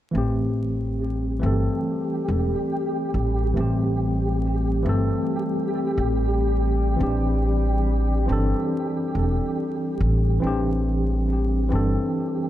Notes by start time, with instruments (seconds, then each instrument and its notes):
0.11 upright bass A1, tine electric piano E3 A3, synth texture G4
0.16 ambient pad G3 G4, tine electric piano C4 G4
1.40 upright bass G1, tine electric piano E3 A3
1.44 tine electric piano C4 A4
2.28 upright bass E1
3.14 upright bass A1
3.54 upright bass A1, tine electric piano E3 A3
3.58 tine electric piano C4 G4
4.82 upright bass G1, tine electric piano E3 A3
4.87 tine electric piano C4 A4
5.98 upright bass A1
6.96 tine electric piano E3 C4
7.01 upright bass A1, tine electric piano D4 G4
8.26 upright bass G1, tine electric piano E3 C4
8.30 tine electric piano D4 A4
9.15 upright bass E1
10.01 upright bass A1
10.40 upright bass A1, tine electric piano E3 C4
10.45 tine electric piano D4 G4
11.69 upright bass G1, tine electric piano E3 C4
11.73 tine electric piano D4 A4